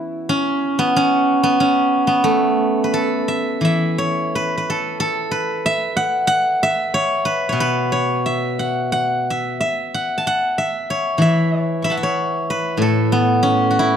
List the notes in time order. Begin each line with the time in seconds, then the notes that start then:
Already playing: E3 B3 C#4 E4 F#4
0.29 C#4
0.79 B3
0.96 C#4
1.43 B3
1.60 C#4
2.07 B3
2.24 A3
2.84 B4
2.94 A4
3.28 E5
3.61 E3 E5
3.98 C#5
4.35 B4
4.58 B4
4.70 A4
5.00 A4
5.31 B4
5.66 E5
5.97 F#5
6.27 F#5
6.63 E5
6.94 C#5
7.25 B4
7.49 B2 C#5
7.60 B4
7.92 C#5
8.26 E5
8.59 F#5
8.92 F#5
9.30 E5
9.61 E5
9.94 F#5
10.18 A5
10.27 F#5
10.58 E5
10.90 C#5
11.18 E3 E5
11.62 C#5
11.82 E5 B5 C#6
11.90 F#5 A5
11.97 E5
12.03 C#5
12.50 B4
12.77 A2
12.82 A4
13.12 B3
13.43 C#4
13.71 F#4
13.79 E4